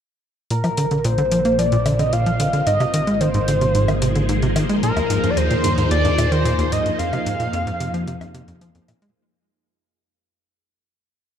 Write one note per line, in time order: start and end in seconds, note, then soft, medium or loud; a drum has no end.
0.50 2.64 A#1 medium
0.50 0.63 A#2 medium
0.50 2.67 G3 medium
0.50 1.06 A#4 medium
0.50 closed hi-hat medium
0.62 0.69 F3 medium
0.62 3.53 A#4 medium
0.62 closed hi-hat soft
0.62 low woodblock medium
0.68 3.53 F4 medium
0.77 0.86 D3 medium
0.77 closed hi-hat medium
0.84 3.53 C4 medium
0.91 1.00 D3 medium
0.91 closed hi-hat soft
1.04 1.18 A#2 loud
1.04 1.60 C5 loud
1.04 closed hi-hat medium
1.18 1.23 D3 medium
1.18 closed hi-hat soft
1.27 3.53 C5 medium
1.31 1.40 F3 medium
1.31 closed hi-hat medium
1.45 1.58 A#3 medium
1.45 closed hi-hat soft
1.59 1.67 F3 medium
1.59 2.01 D5 loud
1.59 closed hi-hat medium
1.72 1.77 A#2 loud
1.72 closed hi-hat soft
1.86 1.94 D3 medium
1.86 closed hi-hat medium
1.86 low woodblock soft
1.99 2.04 D3 medium
1.99 2.14 D#5 medium
1.99 closed hi-hat soft
2.13 2.26 A#2 medium
2.13 2.66 F5 loud
2.13 closed hi-hat medium
2.26 2.32 F3 medium
2.26 closed hi-hat soft
2.40 2.49 D3 medium
2.40 closed hi-hat medium
2.53 2.62 D3 medium
2.53 closed hi-hat soft
2.67 4.80 G#1 medium
2.67 2.80 G#2 medium
2.67 9.16 F3 medium
2.67 3.22 D#5 loud
2.67 closed hi-hat medium
2.77 2.86 C3 loud
2.77 9.16 A#3 medium
2.77 closed hi-hat soft
2.77 low woodblock medium
2.81 9.15 G#4 medium
2.94 3.03 D#3 medium
2.94 closed hi-hat medium
3.07 3.20 G#3 medium
3.07 9.15 D#4 medium
3.07 closed hi-hat soft
3.21 3.30 D#3 medium
3.21 4.29 C5 medium
3.21 closed hi-hat medium
3.34 3.40 G#2 loud
3.34 closed hi-hat soft
3.48 3.57 D3 medium
3.48 closed hi-hat medium
3.61 3.67 C3 medium
3.61 9.16 C5 medium
3.61 closed hi-hat soft
3.75 3.88 G#2 medium
3.75 closed hi-hat medium
3.88 3.94 D#3 medium
3.88 closed hi-hat soft
3.88 low woodblock medium
4.02 4.11 C3 medium
4.02 closed hi-hat medium
4.15 4.24 D3 medium
4.15 closed hi-hat soft
4.29 4.42 G#2 loud
4.29 closed hi-hat medium
4.42 4.48 C3 loud
4.42 closed hi-hat soft
4.56 4.65 D#3 medium
4.56 closed hi-hat medium
4.56 low woodblock medium
4.69 4.82 G#3 medium
4.69 closed hi-hat soft
4.83 6.97 D#2 medium
4.83 4.92 A#2 medium
4.83 5.32 A#4 medium
4.83 closed hi-hat medium
4.97 5.02 D#2 loud
4.97 closed hi-hat soft
4.97 low woodblock medium
5.10 5.19 G#2 medium
5.10 closed hi-hat medium
5.24 5.29 G2 medium
5.24 closed hi-hat soft
5.30 5.39 D5 medium
5.37 5.50 D#2 medium
5.37 5.90 C5 medium
5.37 closed hi-hat medium
5.51 5.56 A#2 medium
5.51 closed hi-hat soft
5.64 5.73 G2 medium
5.64 closed hi-hat medium
5.78 5.86 G#2 medium
5.78 closed hi-hat soft
5.91 6.04 D#2 loud
5.91 6.33 D5 loud
5.91 closed hi-hat medium
6.05 6.10 G2 loud
6.05 closed hi-hat soft
6.18 6.27 A#2 medium
6.18 closed hi-hat medium
6.18 low woodblock soft
6.31 6.45 D#3 medium
6.31 6.73 C5 loud
6.31 closed hi-hat soft
6.45 6.54 A#2 medium
6.45 closed hi-hat medium
6.58 6.64 D#2 loud
6.58 closed hi-hat soft
6.72 6.81 G#2 medium
6.72 7.00 D#5 loud
6.72 closed hi-hat medium
6.86 6.91 G2 medium
6.86 closed hi-hat soft
6.98 9.13 F2 medium
6.98 7.12 F2 medium
6.98 8.61 F5 loud
6.98 closed hi-hat medium
7.13 7.18 C3 medium
7.13 closed hi-hat soft
7.13 low woodblock medium
7.26 7.35 G#2 medium
7.26 closed hi-hat medium
7.40 7.49 A#2 medium
7.40 closed hi-hat soft
7.53 7.66 F2 loud
7.53 closed hi-hat medium
7.67 7.72 G#2 loud
7.67 closed hi-hat soft
7.80 7.89 C3 medium
7.80 closed hi-hat medium
7.94 8.07 F3 medium
7.94 closed hi-hat soft
8.07 8.16 C3 medium
8.07 closed hi-hat medium
8.21 8.26 F2 loud
8.21 closed hi-hat soft
8.21 low woodblock medium
8.34 8.43 C3 loud
8.34 closed hi-hat medium
8.48 8.53 F2 loud
8.48 closed hi-hat soft
8.61 8.70 F3 medium
8.61 closed hi-hat medium
8.75 8.80 F2 loud
8.75 closed hi-hat soft
8.88 8.94 A#2 loud
8.88 closed hi-hat medium
8.88 low woodblock medium
9.02 9.11 G#3 loud
9.02 closed hi-hat soft